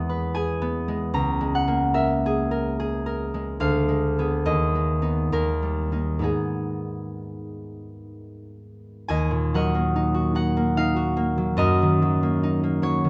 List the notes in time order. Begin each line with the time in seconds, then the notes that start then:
Already playing: E2 G#3 B3 G#4 E5
0.09 B4
0.35 G#4 G#5
0.62 B3
0.88 G#3
1.14 C#2 A#5
1.41 G#3
1.55 F#5
1.68 A#3
1.94 A#4 E5
2.26 G#4
2.51 A#4
2.80 G#4
3.06 A#4
3.34 G#3
3.60 D2 F5
3.88 G#3
4.19 B3 G#4
4.46 D#2 D#5
4.75 G#3
5.02 B3 D#4
5.32 D#2 A#4
5.62 G3
5.92 A#3 D#4
6.19 G#2 G#3 B3 D#4
6.24 G#4
9.08 D#2 D#5 G#5
9.31 A#2
9.54 F#3 A#4 D#5 F#5
9.75 A#3
9.96 D#4
10.14 F#4
10.35 D#4 F#5
10.57 A#3
10.77 D#4 F5
10.96 F#4
11.17 A#3
11.38 F#3
11.57 F#2 F#4 A#4 D#5
11.82 D#3
12.02 F#3
12.23 A#3
12.43 D#4
12.63 A#3
12.82 F#3 C#5
13.04 D#3